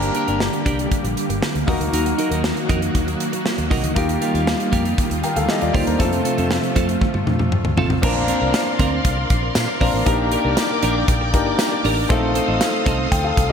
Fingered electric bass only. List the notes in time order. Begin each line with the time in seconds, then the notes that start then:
0.28 G1
0.66 C2
1.04 A#1
1.30 G1
1.55 D2
1.68 D#2
1.80 D2
1.93 D#2
2.31 D#2
2.70 F2
2.95 D#2
3.58 D#2
3.71 C2
3.84 D2
3.96 D#2
4.34 D#2
4.73 F2
5.11 D#2
5.36 D2
5.62 D#2
5.75 D2
5.87 D#2
6.00 F2
6.38 F2
6.76 F2
7.14 G2
7.27 F2
7.40 F2
7.65 D2
7.78 A1
8.03 A#1
8.42 C2
8.80 D2
9.05 C2
9.30 A#1
9.56 A#2
9.81 A#1
9.94 A1
10.07 A#1
10.45 C2
10.83 A#1
11.08 A#1
11.34 G1
11.85 A1
12.10 A#1
12.48 A1
12.86 C2
13.12 D2
13.38 C2